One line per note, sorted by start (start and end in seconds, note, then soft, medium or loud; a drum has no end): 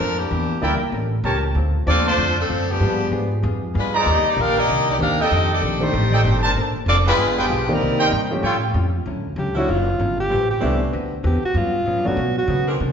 0.00 0.29 F2 medium
0.00 0.19 F3 medium
0.00 0.19 A#3 medium
0.00 0.19 C4 medium
0.00 0.18 D4 medium
0.00 0.19 D4 medium
0.00 0.19 A4 medium
0.00 0.19 A#4 medium
0.00 0.20 C5 medium
0.18 0.62 E3 medium
0.18 0.62 A#3 medium
0.18 0.62 D4 medium
0.18 0.62 G4 medium
0.30 0.61 E2 medium
0.30 0.51 E3 soft
0.30 0.51 A#3 soft
0.30 0.51 D4 medium
0.30 0.52 G4 medium
0.62 0.80 D2 medium
0.62 0.82 E3 medium
0.62 0.79 G3 medium
0.62 0.79 A#3 medium
0.62 0.82 A#3 medium
0.62 0.79 D4 medium
0.62 0.83 D4 medium
0.62 0.75 E4 medium
0.62 0.79 E4 medium
0.62 0.83 G4 medium
0.62 0.75 A#4 medium
0.62 0.80 A#4 medium
0.62 0.75 D5 medium
0.62 0.75 G5 medium
0.82 muted upright bass stroke soft
0.92 1.23 A1 medium
0.92 1.14 A3 medium
0.92 1.14 C#4 medium
0.92 1.14 G4 medium
0.92 1.14 A#4 medium
1.24 1.54 C#2 loud
1.24 1.45 A3 medium
1.24 1.45 C#4 medium
1.24 1.37 G4 medium
1.24 1.45 G4 medium
1.24 1.37 A#4 medium
1.24 1.46 A#4 medium
1.24 1.37 C#5 medium
1.24 1.37 A5 medium
1.55 1.86 D2 medium
1.55 1.76 D3 soft
1.55 1.76 A3 medium
1.55 1.77 C4 medium
1.55 1.77 F4 medium
1.86 2.17 D#2 medium
1.86 2.07 D3 medium
1.86 2.04 F3 medium
1.86 2.04 A3 medium
1.86 2.08 A3 medium
1.86 2.04 C4 medium
1.86 2.08 C4 medium
1.86 2.05 C4 medium
1.86 2.05 D4 medium
1.86 2.08 F4 medium
1.86 2.06 F4 loud
1.86 2.05 A4 medium
1.86 2.05 D5 loud
2.06 2.36 A3 medium
2.06 2.37 D4 medium
2.06 2.14 F4 medium
2.06 2.36 F4 medium
2.06 2.14 C5 medium
2.06 2.36 C5 loud
2.06 2.14 D5 medium
2.06 2.14 A5 loud
2.18 2.48 F2 medium
2.18 2.38 D3 medium
2.18 2.39 A3 soft
2.18 2.39 C4 soft
2.18 2.39 F4 medium
2.40 2.70 F3 medium
2.40 2.70 C4 medium
2.40 2.70 D4 medium
2.40 2.70 A4 medium
2.49 2.80 F#2 medium
2.49 2.70 D3 medium
2.49 2.70 A3 medium
2.49 2.70 C4 medium
2.49 2.70 F4 medium
2.71 3.13 F3 medium
2.71 3.13 B3 medium
2.71 3.13 D4 medium
2.71 3.13 G4 medium
2.80 3.11 G2 medium
2.80 3.27 F3 medium
2.80 3.01 G3 soft
2.80 3.27 G#3 soft
2.80 3.27 B3 medium
2.80 3.01 B3 soft
2.80 3.27 D4 medium
2.80 3.01 F4 medium
2.80 3.27 G4 medium
2.80 3.02 G#4 medium
3.12 3.42 G#2 medium
3.12 3.32 G3 medium
3.12 3.33 B3 medium
3.12 3.33 F4 medium
3.12 3.33 G#4 medium
3.42 3.74 F2 medium
3.42 3.63 G3 medium
3.42 3.64 B3 medium
3.42 3.64 F4 medium
3.42 3.64 G#4 medium
3.74 4.05 G2 medium
3.74 3.95 G3 medium
3.74 3.95 B3 medium
3.74 3.94 D4 medium
3.74 3.95 F4 medium
3.74 3.95 G#4 medium
3.78 3.94 G#3 medium
3.78 3.95 F4 medium
3.78 3.94 B4 medium
3.94 4.35 D#4 loud
3.94 4.35 C5 medium
3.94 4.35 D5 medium
3.94 4.35 A#5 loud
3.98 4.09 B3 medium
3.98 4.09 F4 medium
3.98 4.08 G#4 medium
3.98 4.08 D5 medium
4.05 4.23 D#2 medium
4.05 4.26 C3 medium
4.05 4.27 D#3 soft
4.05 4.27 A#3 medium
4.05 4.27 D4 medium
4.10 4.27 A#3 medium
4.10 4.27 D4 medium
4.10 4.27 G4 medium
4.10 4.27 D#5 loud
4.24 muted upright bass stroke soft
4.28 4.39 A#3 medium
4.28 4.39 D#4 medium
4.28 4.39 G4 medium
4.28 4.39 D5 medium
4.36 4.67 A#1 medium
4.36 4.57 C3 medium
4.36 4.57 D#3 medium
4.36 4.58 A#3 medium
4.36 4.58 D4 medium
4.41 4.58 D4 loud
4.41 4.58 G4 loud
4.41 4.58 A#4 loud
4.41 4.58 F5 loud
4.59 4.89 A#3 medium
4.59 4.89 G4 medium
4.59 4.89 D5 medium
4.59 4.89 D#5 loud
4.68 4.99 C2 medium
4.68 4.89 C3 soft
4.68 4.89 D#3 soft
4.68 4.89 A#3 medium
4.68 4.90 D4 medium
4.91 4.95 A#3 medium
4.91 4.96 D#4 medium
4.91 4.96 G4 medium
4.91 4.96 D5 medium
4.98 5.31 D#2 medium
4.98 5.19 C3 medium
4.98 5.17 D#3 soft
4.98 5.20 D#3 medium
4.98 5.17 A#3 soft
4.98 5.20 A#3 medium
4.98 5.17 C4 soft
4.98 5.20 D4 medium
4.98 5.17 D4 soft
4.98 5.17 G4 soft
4.98 5.19 G4 medium
4.98 5.19 F5 medium
5.03 5.19 D4 medium
5.03 5.19 A#4 medium
5.19 5.51 C4 medium
5.19 5.60 D#4 medium
5.19 5.51 G4 medium
5.19 5.60 A4 medium
5.19 5.51 A4 medium
5.19 5.60 D#5 medium
5.19 5.51 D#5 loud
5.19 5.60 G5 medium
5.30 5.51 F2 soft
5.30 5.61 F2 medium
5.30 5.51 D#3 soft
5.30 5.52 A3 soft
5.30 5.52 D4 medium
5.53 5.81 C4 medium
5.53 5.81 G4 medium
5.53 5.81 A4 medium
5.53 5.81 D5 medium
5.61 5.92 A#1 medium
5.61 5.82 F2 medium
5.61 5.82 D#3 medium
5.61 5.83 A3 medium
5.61 5.83 D4 medium
5.80 5.92 D#3 medium
5.80 5.92 A3 medium
5.80 6.45 A3 medium
5.80 5.92 C4 medium
5.80 5.92 D4 medium
5.80 6.45 D#4 medium
5.80 5.92 G4 medium
5.80 6.45 G4 medium
5.80 6.45 C5 medium
5.92 6.24 A1 medium
5.92 6.13 F2 soft
5.92 6.14 D#3 soft
5.92 6.14 A3 medium
5.92 6.14 D4 medium
6.12 6.21 D#4 medium
6.12 6.21 A4 medium
6.12 6.21 D5 medium
6.12 6.21 G5 loud
6.24 6.54 G1 medium
6.24 6.45 F2 medium
6.24 6.45 D#3 medium
6.24 6.45 A3 medium
6.24 6.45 D4 medium
6.43 6.52 D4 medium
6.43 6.52 A#4 medium
6.43 6.52 C5 medium
6.43 6.52 A5 loud
6.55 6.73 A#1 medium
6.55 6.76 A#3 medium
6.55 6.77 D4 medium
6.55 6.77 A4 medium
6.55 6.77 C5 medium
6.75 muted upright bass stroke soft
6.86 7.17 F1 medium
6.86 7.08 A#3 medium
6.86 6.97 C4 medium
6.86 7.08 D4 medium
6.86 6.97 F4 medium
6.86 7.08 A4 medium
6.86 6.97 A4 medium
6.86 7.08 C5 medium
6.86 6.97 D5 loud
7.05 7.37 G#3 medium
7.05 7.37 D4 medium
7.05 7.14 F4 medium
7.05 7.37 F4 medium
7.05 7.14 G#4 medium
7.05 7.14 B4 medium
7.05 7.37 B4 loud
7.05 7.14 G5 loud
7.18 7.48 G1 medium
7.18 7.38 G3 medium
7.18 7.39 B3 soft
7.18 7.39 F4 medium
7.18 7.39 G#4 medium
7.37 7.70 F3 medium
7.37 7.70 B3 medium
7.37 7.70 D4 medium
7.37 7.46 F4 loud
7.37 7.70 G4 medium
7.37 7.45 G#4 medium
7.37 7.46 B4 medium
7.37 7.46 G5 loud
7.50 7.80 B1 medium
7.50 7.70 G3 medium
7.50 7.70 B3 medium
7.50 7.70 F4 medium
7.50 7.71 G#4 medium
7.69 8.10 D#3 medium
7.69 8.14 G3 medium
7.69 8.10 A#3 medium
7.69 8.10 C4 medium
7.69 8.14 C4 medium
7.69 8.10 G4 medium
7.69 8.10 D5 medium
7.73 8.14 D#4 medium
7.73 8.14 A#4 medium
7.81 8.11 C2 medium
7.81 8.01 C3 soft
7.81 8.02 G3 soft
7.81 8.02 A#3 medium
7.81 8.02 D#4 medium
7.99 8.08 D#4 medium
7.99 8.08 A#4 medium
7.99 8.08 C5 medium
7.99 8.08 G5 loud
8.12 8.42 G2 medium
8.12 8.32 C3 medium
8.12 8.33 G3 medium
8.12 8.33 A#3 medium
8.12 8.33 D#4 medium
8.31 8.42 F3 medium
8.31 8.42 A3 medium
8.31 8.42 C4 medium
8.31 8.43 C#4 medium
8.31 8.43 G4 medium
8.43 8.73 A2 medium
8.43 8.64 A2 medium
8.43 8.64 G3 medium
8.43 8.64 C#4 medium
8.43 8.56 F4 medium
8.43 8.65 F4 medium
8.43 8.56 A4 medium
8.43 8.56 C#5 medium
8.43 8.56 G5 loud
8.74 9.05 F2 medium
8.74 8.95 A2 medium
8.74 8.95 G3 medium
8.74 8.95 C#4 medium
8.74 8.96 F4 medium
9.05 9.35 D2 medium
9.05 9.26 D3 medium
9.05 9.27 F#3 medium
9.05 9.27 C#4 medium
9.05 9.27 E4 medium
9.36 9.67 C#2 medium
9.36 9.57 D3 medium
9.36 9.58 F#3 medium
9.36 9.58 C#4 medium
9.36 9.58 E4 medium
9.36 9.58 G4 medium
9.55 9.96 D3 medium
9.55 9.96 F#3 medium
9.55 9.67 F#3 medium
9.55 9.67 A3 medium
9.55 9.97 C#4 medium
9.55 9.67 C#4 medium
9.55 9.68 D4 medium
9.55 9.97 E4 medium
9.55 9.68 E4 medium
9.55 9.71 F#4 medium
9.67 9.99 F#1 medium
9.67 9.88 D3 soft
9.67 9.88 F#3 soft
9.67 9.89 C#4 medium
9.67 9.89 E4 soft
9.67 10.19 F4 medium
9.99 10.30 G1 medium
9.99 10.20 D3 medium
9.99 10.20 F#3 medium
9.99 10.20 C#4 medium
9.99 10.21 E4 medium
10.20 10.48 G4 medium
10.30 10.61 A1 medium
10.30 10.51 A2 soft
10.30 10.43 E3 medium
10.30 10.51 G3 medium
10.30 10.43 A3 medium
10.30 10.43 C4 medium
10.30 10.51 C4 medium
10.30 10.51 E4 soft
10.30 10.44 G4 medium
10.51 10.79 G4 medium
10.60 10.93 C2 medium
10.60 10.82 A2 medium
10.60 10.92 E3 medium
10.60 10.79 G3 medium
10.60 10.82 G3 medium
10.60 10.93 A3 medium
10.60 10.79 A3 medium
10.60 10.79 B3 medium
10.60 10.93 C4 medium
10.60 10.79 C4 medium
10.60 10.82 C4 medium
10.60 10.93 D4 medium
10.60 10.79 E4 medium
10.60 10.83 E4 medium
10.92 11.24 D2 medium
10.92 11.13 D3 soft
10.92 11.13 C4 medium
10.92 11.14 F#4 medium
10.92 11.14 B4 medium
11.23 11.42 E2 medium
11.23 11.44 D3 medium
11.23 11.45 C4 medium
11.23 11.45 F#4 medium
11.23 11.43 G4 medium
11.23 11.45 B4 medium
11.43 11.59 F#4 medium
11.43 muted upright bass stroke soft
11.54 11.85 G2 medium
11.54 11.76 G2 soft
11.54 11.76 F#3 soft
11.54 11.77 B3 soft
11.54 11.77 C#4 medium
11.54 12.08 F4 medium
11.86 12.07 G2 medium
11.86 11.97 A2 medium
11.86 12.07 F#3 medium
11.86 12.08 B3 medium
11.86 12.08 C#4 medium
11.97 12.06 G2 medium
12.05 12.16 F#2 medium
12.05 12.16 F#3 medium
12.05 12.16 A3 medium
12.05 12.17 B3 medium
12.05 12.17 C#4 medium
12.05 12.17 D4 medium
12.05 12.38 F#4 medium
12.17 12.38 G2 soft
12.17 12.47 B2 medium
12.17 12.39 F#3 soft
12.17 12.39 B3 medium
12.17 12.39 C#4 medium
12.38 12.67 F#4 medium
12.48 12.69 G2 medium
12.48 12.79 C#3 loud
12.48 12.69 F#3 medium
12.48 12.70 B3 medium
12.48 12.70 C#4 medium
12.68 12.77 E3 medium
12.68 12.77 C4 medium
12.68 12.76 D4 medium
12.68 12.76 A#4 medium
12.80 12.92 C3 medium
12.80 12.92 E3 medium
12.80 12.92 A#3 medium
12.80 12.92 D4 medium